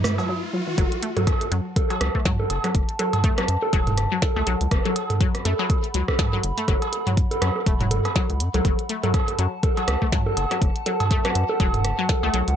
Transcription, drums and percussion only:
0.04 cross-stick, mid tom, maracas
0.18 cowbell, maracas
0.78 kick, closed hi-hat, low bongo
0.92 closed hi-hat
1.03 closed hi-hat
1.17 closed hi-hat, mid tom, low bongo
1.27 kick, cross-stick, closed hi-hat, cowbell
1.41 closed hi-hat, low bongo
1.52 closed hi-hat
1.76 kick, closed hi-hat, low bongo
1.90 closed hi-hat, cowbell
2.01 cross-stick, closed hi-hat, low bongo
2.15 kick
2.25 kick, snare, closed hi-hat, mid tom
2.40 low bongo
2.50 closed hi-hat, cowbell
2.64 cross-stick, closed hi-hat, low bongo
2.75 kick, closed hi-hat
2.89 closed hi-hat
2.99 closed hi-hat, low bongo
3.13 closed hi-hat, mid tom, cowbell
3.24 kick, closed hi-hat, low bongo
3.38 cross-stick, closed hi-hat
3.48 closed hi-hat
3.62 low bongo
3.73 kick, closed hi-hat, cowbell
3.87 closed hi-hat, mid tom, low bongo
3.98 cross-stick, closed hi-hat
4.22 kick, snare, closed hi-hat, low bongo
4.36 cowbell
4.47 closed hi-hat, low bongo
4.61 closed hi-hat
4.71 kick, cross-stick, closed hi-hat
4.85 closed hi-hat, low bongo
4.96 closed hi-hat, cowbell
5.10 closed hi-hat, mid tom, low bongo
5.21 kick, closed hi-hat
5.35 cross-stick, closed hi-hat
5.45 closed hi-hat, low bongo
5.59 cowbell
5.70 kick, closed hi-hat, low bongo
5.84 closed hi-hat
5.94 closed hi-hat
6.08 kick, cross-stick, low bongo
6.19 kick, snare, closed hi-hat, mid tom, cowbell
6.33 low bongo
6.44 closed hi-hat
6.58 closed hi-hat
6.68 kick, cross-stick, closed hi-hat, low bongo
6.82 closed hi-hat, cowbell
6.93 closed hi-hat, low bongo
7.07 closed hi-hat, mid tom
7.17 kick, closed hi-hat
7.31 closed hi-hat, low bongo
7.42 cross-stick, closed hi-hat, cowbell
7.56 low bongo
7.66 kick, closed hi-hat
7.80 closed hi-hat, mid tom
7.91 closed hi-hat, mid tom, low bongo
8.05 cross-stick, closed hi-hat, cowbell
8.16 kick, snare, closed hi-hat, low bongo
8.30 closed hi-hat
8.40 closed hi-hat
8.54 closed hi-hat, low bongo
8.65 kick, closed hi-hat, low bongo
8.79 closed hi-hat
8.89 closed hi-hat
9.04 closed hi-hat, mid tom, low bongo
9.14 kick, cross-stick, closed hi-hat, cowbell
9.28 closed hi-hat, low bongo
9.39 closed hi-hat
9.63 kick, closed hi-hat, low bongo
9.77 closed hi-hat, cowbell
9.88 cross-stick, closed hi-hat, low bongo
10.02 kick
10.12 kick, snare, closed hi-hat, mid tom
10.26 low bongo
10.37 closed hi-hat, cowbell
10.51 cross-stick, closed hi-hat, low bongo
10.62 kick, closed hi-hat
10.76 closed hi-hat
10.86 closed hi-hat, low bongo
11.00 closed hi-hat, mid tom, cowbell
11.11 kick, closed hi-hat, low bongo
11.25 cross-stick, closed hi-hat
11.35 closed hi-hat
11.49 low bongo
11.60 kick, closed hi-hat, cowbell
11.74 closed hi-hat, mid tom, low bongo
11.85 cross-stick, closed hi-hat
12.09 kick, snare, closed hi-hat, low bongo
12.23 cowbell
12.34 closed hi-hat, low bongo
12.48 closed hi-hat

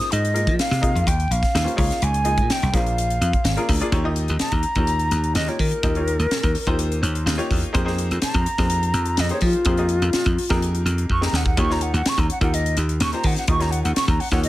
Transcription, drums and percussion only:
0.00 snare, closed hi-hat
0.12 closed hi-hat
0.25 closed hi-hat
0.36 closed hi-hat
0.47 kick, closed hi-hat
0.59 snare, closed hi-hat
0.73 snare, closed hi-hat
0.83 kick, closed hi-hat
0.96 closed hi-hat
1.07 kick, closed hi-hat
1.20 closed hi-hat
1.32 closed hi-hat
1.43 kick, snare, closed hi-hat
1.55 snare, closed hi-hat
1.68 closed hi-hat
1.78 kick, open hi-hat
1.91 snare, closed hi-hat
2.02 closed hi-hat
2.14 closed hi-hat
2.25 closed hi-hat
2.38 kick, closed hi-hat
2.50 snare, closed hi-hat
2.62 closed hi-hat
2.74 kick, snare, closed hi-hat
2.86 closed hi-hat
2.98 closed hi-hat
3.10 closed hi-hat
3.22 closed hi-hat
3.33 kick, closed hi-hat
3.45 snare, closed hi-hat
3.57 closed hi-hat
3.69 kick, open hi-hat
3.81 closed hi-hat
3.92 kick, closed hi-hat
4.16 closed hi-hat
4.28 closed hi-hat
4.39 snare, closed hi-hat
4.52 kick, closed hi-hat
4.63 closed hi-hat
4.75 kick, closed hi-hat
4.87 closed hi-hat
4.99 closed hi-hat
5.11 closed hi-hat
5.24 closed hi-hat
5.35 snare, closed hi-hat
5.48 closed hi-hat
5.59 kick, open hi-hat
5.72 closed hi-hat
5.83 kick, closed hi-hat
5.95 closed hi-hat
6.08 closed hi-hat
6.20 closed hi-hat
6.31 snare, closed hi-hat
6.43 kick, closed hi-hat
6.55 open hi-hat
6.67 kick, closed hi-hat
6.79 closed hi-hat
6.92 closed hi-hat
7.03 closed hi-hat
7.15 closed hi-hat
7.27 snare, closed hi-hat
7.39 closed hi-hat
7.51 kick, open hi-hat
7.63 closed hi-hat
7.75 kick, closed hi-hat
7.87 snare
7.98 closed hi-hat
8.11 closed hi-hat
8.22 snare, closed hi-hat
8.34 kick, closed hi-hat
8.46 closed hi-hat
8.58 kick, snare, closed hi-hat
8.70 closed hi-hat
8.83 closed hi-hat
8.94 closed hi-hat
9.05 closed hi-hat
9.17 snare, closed hi-hat
9.29 closed hi-hat
9.41 kick, open hi-hat
9.53 closed hi-hat
9.65 kick, closed hi-hat
9.77 closed hi-hat
9.89 closed hi-hat
10.02 closed hi-hat
10.13 snare, closed hi-hat
10.26 kick, closed hi-hat
10.38 open hi-hat
10.50 kick, snare, closed hi-hat
10.62 closed hi-hat
10.75 closed hi-hat
10.86 closed hi-hat
10.98 closed hi-hat
11.10 kick
11.22 snare
11.34 snare
11.46 kick
11.57 kick, closed hi-hat
11.70 snare
11.81 closed hi-hat
11.94 closed hi-hat
12.06 snare, closed hi-hat
12.18 kick, closed hi-hat
12.30 closed hi-hat
12.41 kick, closed hi-hat
12.54 closed hi-hat
12.66 closed hi-hat
12.77 closed hi-hat
12.89 closed hi-hat
13.00 snare, closed hi-hat
13.13 closed hi-hat
13.23 kick, open hi-hat
13.36 snare, closed hi-hat
13.48 kick, closed hi-hat
13.61 snare, closed hi-hat
13.72 closed hi-hat
13.85 closed hi-hat
13.96 snare, closed hi-hat
14.08 kick, closed hi-hat
14.20 open hi-hat
14.32 kick, snare, closed hi-hat
14.44 closed hi-hat

